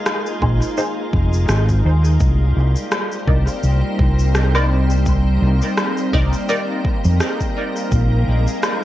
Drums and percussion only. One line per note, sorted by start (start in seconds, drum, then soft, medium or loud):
0.06 cross-stick medium
0.06 low woodblock medium
0.06 shaker medium
0.26 shaker soft
0.42 kick loud
0.62 shaker soft
0.78 shaker medium
1.13 kick loud
1.33 shaker soft
1.49 cross-stick medium
1.49 shaker soft
1.69 kick medium
1.69 shaker soft
2.05 shaker soft
2.20 kick loud
2.20 shaker soft
2.76 shaker soft
2.92 cross-stick medium
2.92 low woodblock medium
2.92 shaker medium
3.12 shaker soft
3.28 kick loud
3.48 shaker soft
3.63 shaker medium
3.99 kick loud
4.19 shaker soft
4.35 cross-stick medium
4.35 shaker medium
4.55 low woodblock medium
4.55 shaker soft
4.90 shaker soft
5.06 kick loud
5.06 shaker soft
5.62 shaker soft
5.77 cross-stick medium
5.77 low woodblock medium
5.77 shaker medium
5.97 shaker soft
6.13 kick loud
6.33 shaker soft
6.49 shaker medium
6.85 kick loud
7.05 shaker soft
7.20 cross-stick medium
7.20 shaker medium
7.40 kick medium
7.40 shaker soft
7.76 shaker soft
7.92 kick loud
7.92 shaker medium
8.48 shaker soft
8.63 cross-stick medium
8.63 low woodblock medium
8.63 shaker medium